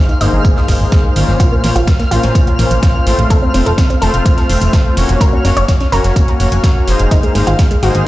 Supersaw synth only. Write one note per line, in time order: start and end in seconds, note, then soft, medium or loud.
0.21 0.31 G#2 loud
0.21 0.31 A#3 medium
0.21 0.31 D#4 medium
0.21 0.31 G#4 medium
0.21 0.31 C5 loud
0.33 0.66 G#2 medium
0.33 0.66 A#3 medium
0.33 0.66 D#4 medium
0.33 0.66 G#4 medium
0.33 0.66 C5 medium
0.69 1.13 G#2 medium
0.69 1.13 A#3 medium
0.69 1.13 D#4 medium
0.69 1.13 G#4 medium
0.69 1.13 C5 medium
1.16 1.61 A#2 medium
1.16 1.61 A#3 medium
1.16 1.61 C#4 medium
1.16 1.61 F4 medium
1.16 1.61 C5 loud
1.64 1.75 A#2 medium
1.64 1.75 A#3 medium
1.64 1.75 C#4 medium
1.64 1.75 F4 medium
1.64 1.75 C5 medium
2.11 2.22 A#2 loud
2.11 2.22 A#3 medium
2.11 2.22 C#4 medium
2.11 2.22 F4 medium
2.11 2.22 C5 loud
2.23 2.56 A#2 medium
2.23 2.56 A#3 medium
2.23 2.56 C#4 medium
2.23 2.56 F4 medium
2.23 2.56 C5 medium
2.59 3.04 A#2 medium
2.59 3.04 A#3 medium
2.59 3.04 C#4 medium
2.59 3.04 F4 medium
2.59 3.04 C5 medium
3.07 3.51 A3 medium
3.07 3.51 C4 medium
3.07 3.51 F4 medium
3.07 3.51 C5 medium
3.54 3.66 A3 medium
3.54 3.66 C4 medium
3.54 3.66 F4 medium
3.54 3.66 C5 medium
4.02 4.12 A3 loud
4.02 4.12 C4 medium
4.02 4.12 F4 medium
4.02 4.12 C5 loud
4.14 4.47 A3 medium
4.14 4.47 C4 medium
4.14 4.47 F4 medium
4.14 4.47 C5 medium
4.49 4.94 A3 medium
4.49 4.94 C4 medium
4.49 4.94 F4 medium
4.49 4.94 C5 medium
4.97 5.42 A#3 medium
4.97 5.42 C#4 medium
4.97 5.42 F#4 medium
4.97 5.42 C#5 loud
5.45 5.56 A#3 medium
5.45 5.56 C#4 medium
5.45 5.56 F#4 medium
5.45 5.56 C#5 medium
5.92 6.02 A#3 loud
5.92 6.03 C#4 medium
5.92 6.03 F#4 medium
5.92 6.02 C#5 loud
6.04 6.37 A#3 medium
6.04 6.37 C#4 medium
6.04 6.37 F#4 medium
6.04 6.37 C#5 medium
6.40 6.85 A#3 medium
6.40 6.85 C#4 medium
6.40 6.85 F#4 medium
6.40 6.85 C#5 medium
6.88 7.32 G#2 medium
6.88 7.32 A#3 medium
6.88 7.32 D#4 medium
6.88 7.32 G#4 medium
6.88 7.32 C5 loud
7.35 7.47 G#2 medium
7.35 7.47 A#3 medium
7.35 7.47 D#4 medium
7.35 7.47 G#4 medium
7.35 7.47 C5 medium
7.83 7.93 G#2 loud
7.83 7.93 A#3 medium
7.83 7.93 D#4 medium
7.83 7.93 G#4 medium
7.83 7.93 C5 loud
7.95 8.08 G#2 medium
7.95 8.08 A#3 medium
7.95 8.08 D#4 medium
7.95 8.08 G#4 medium
7.95 8.08 C5 medium